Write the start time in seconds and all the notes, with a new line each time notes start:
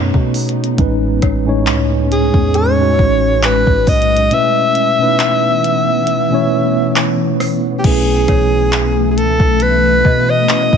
Already playing: F#2 B2 A3 B3 C#4 D#4 A4 C#5
0.14 B2, kick
0.34 closed hi-hat, open hi-hat
0.49 closed hi-hat
0.64 closed hi-hat
0.77 A1 A2 G#3 C#4 D#4, kick, closed hi-hat
0.81 B4
1.22 A1 C#5, kick, cross-stick, closed hi-hat
1.45 A2 G#3 C#4 D#4
1.49 C#5
1.67 C#2, clap, closed hi-hat
2.12 G#4, closed hi-hat
2.34 E2, kick
2.54 G#4 C#5, closed hi-hat
2.78 A2 G#3 C#4 D#4 F#4
2.99 A1, kick
3.43 B4, clap, closed hi-hat
3.67 A1, kick
3.87 B1 D#5, kick, closed hi-hat, open hi-hat
4.02 closed hi-hat
4.17 closed hi-hat
4.30 B2 E3 A3 B3 C#4 E4 E5, closed hi-hat
4.34 B4
4.75 closed hi-hat
4.98 B2 A3 C#4 D#4
5.02 B4
5.07 E4
5.19 clap, closed hi-hat
5.64 closed hi-hat
6.07 closed hi-hat
6.30 B2 A3 C#4 E4
6.34 C#5
6.96 clap, closed hi-hat
7.40 cross-stick, open hi-hat
7.79 G4
7.83 B1 B2 E3 A3 B3 C#4 E4 G#4 B4, kick, closed hi-hat, crash
8.28 B1 C#5, kick, cross-stick, closed hi-hat
8.73 clap, closed hi-hat
9.11 G#4
9.17 C#2 A4, closed hi-hat
9.40 B1, kick
9.60 B4, closed hi-hat
10.05 B2 D#5, kick
10.30 D#5
10.47 B2 A3 C#4 E4, clap, closed hi-hat
10.52 B4
10.73 B1, kick